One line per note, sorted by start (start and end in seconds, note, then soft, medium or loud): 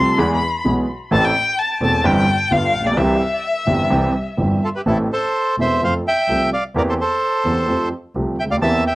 0.00 0.15 C2 medium
0.00 0.15 C3 medium
0.00 0.15 F3 soft
0.00 0.15 A3 soft
0.00 0.15 C4 soft
0.00 0.15 A4 soft
0.00 0.21 C6 medium
0.18 0.38 E2 medium
0.18 0.38 E3 medium
0.18 0.38 G#3 medium
0.18 0.38 B3 medium
0.18 0.38 G#4 medium
0.18 0.30 B5 medium
0.34 0.64 B5 medium
0.64 0.84 B1 medium
0.64 0.84 B1 soft
0.64 0.84 B2 medium
0.64 0.84 E3 soft
0.64 0.84 G#3 soft
0.64 0.84 B3 soft
0.64 0.84 G#4 medium
1.11 1.31 A1 medium
1.11 1.30 A2 medium
1.11 1.30 E3 medium
1.11 1.30 A3 medium
1.11 1.31 C4 medium
1.11 1.31 A4 medium
1.11 1.26 A5 loud
1.24 1.60 G5 loud
1.59 1.81 A5 medium
1.81 2.00 E1 medium
1.81 2.00 E2 medium
1.81 2.00 E3 soft
1.81 2.00 A3 soft
1.81 2.00 C4 soft
1.81 2.00 A4 medium
1.81 2.07 A5 medium
2.04 2.23 G1 medium
2.04 2.23 G2 medium
2.04 2.23 E3 medium
2.04 2.23 G3 medium
2.04 2.24 C4 medium
2.04 2.24 G4 medium
2.04 2.15 G5 loud
2.16 2.53 G5 medium
2.50 2.69 G1 medium
2.50 2.70 G1 medium
2.50 2.70 G2 medium
2.50 2.70 D3 soft
2.50 2.70 G3 soft
2.50 2.70 B3 soft
2.50 2.70 F4 medium
2.50 2.88 F5 medium
2.73 2.96 A#1 medium
2.80 2.85 A1 soft
2.85 2.91 A#1 medium
2.85 2.98 D5 medium
2.91 2.96 B1 medium
2.96 3.16 C2 medium
2.96 3.16 C3 medium
2.96 3.16 E3 medium
2.96 3.16 G3 medium
2.96 3.16 C4 medium
2.96 3.16 G4 medium
2.96 4.62 E5 medium
3.67 3.86 G1 medium
3.67 3.86 G2 medium
3.67 3.86 E3 soft
3.67 3.86 G3 soft
3.67 3.87 C4 soft
3.67 3.87 G4 medium
3.90 4.10 C2 medium
3.90 4.10 C3 medium
3.90 4.10 E3 medium
3.90 4.10 G3 medium
3.90 4.10 C4 medium
3.90 4.10 G4 medium
4.37 4.58 G1 medium
4.37 4.59 G1 medium
4.37 4.58 G2 soft
4.37 4.58 E3 soft
4.37 4.58 G3 soft
4.37 4.58 C4 soft
4.37 4.58 G4 soft
4.64 4.69 F4 medium
4.64 4.69 A4 medium
4.76 4.82 G4 medium
4.76 4.81 B4 medium
4.86 5.06 A1 medium
4.86 5.06 A2 medium
4.86 5.06 E3 medium
4.86 5.06 B3 medium
4.86 5.06 C4 medium
4.86 4.98 E4 medium
4.86 5.06 A4 medium
4.86 4.98 A4 medium
5.13 5.56 A4 medium
5.13 5.56 C5 medium
5.58 5.78 E1 medium
5.58 5.78 E1 soft
5.58 5.78 E2 soft
5.58 5.78 E3 soft
5.58 5.78 B3 soft
5.58 5.78 C4 soft
5.58 5.78 A4 soft
5.58 5.81 C5 medium
5.58 5.83 E5 medium
5.82 6.01 F2 medium
5.82 6.02 F2 soft
5.82 6.02 F3 soft
5.82 6.02 A3 soft
5.82 6.02 C4 soft
5.82 6.02 A4 soft
5.82 5.94 C5 medium
5.82 5.94 F5 medium
6.08 6.50 E5 medium
6.08 6.50 G5 loud
6.28 6.48 C2 medium
6.28 6.49 C2 soft
6.28 6.48 C3 soft
6.28 6.48 F3 soft
6.28 6.48 A3 soft
6.28 6.48 C4 soft
6.28 6.48 A4 soft
6.53 6.63 D5 medium
6.53 6.64 F5 medium
6.75 6.95 E2 medium
6.75 6.95 E3 medium
6.75 6.95 A#3 medium
6.75 6.95 C4 medium
6.75 6.95 G4 medium
6.75 6.82 A#4 medium
6.75 6.82 D5 medium
6.89 6.94 A4 medium
6.89 6.94 C5 medium
7.01 7.89 A4 medium
7.01 7.89 C5 medium
7.45 7.64 E2 soft
7.45 7.65 E2 soft
7.45 7.65 E3 medium
7.45 7.64 A#3 soft
7.45 7.65 C4 soft
7.45 7.65 G4 soft
7.68 7.88 F2 soft
7.68 7.88 F2 medium
7.68 7.88 F3 soft
7.68 7.87 A3 soft
7.68 7.88 C4 soft
7.68 7.88 G4 medium
8.15 8.35 C2 medium
8.15 8.35 C3 soft
8.15 8.35 F3 soft
8.15 8.35 A3 soft
8.15 8.35 C4 soft
8.15 8.35 G4 soft
8.38 8.61 D2 medium
8.38 8.45 E5 medium
8.38 8.44 G5 medium
8.44 8.50 C#2 soft
8.50 8.56 D2 medium
8.50 8.56 D5 medium
8.50 8.56 F5 medium
8.56 8.62 D#2 medium
8.61 8.81 E2 medium
8.61 8.82 E2 medium
8.61 8.82 E3 medium
8.61 8.81 A#3 medium
8.61 8.82 C4 medium
8.61 8.82 G4 medium
8.61 8.84 E5 medium
8.61 8.84 A5 loud
8.87 8.95 E5 medium
8.87 8.95 G5 medium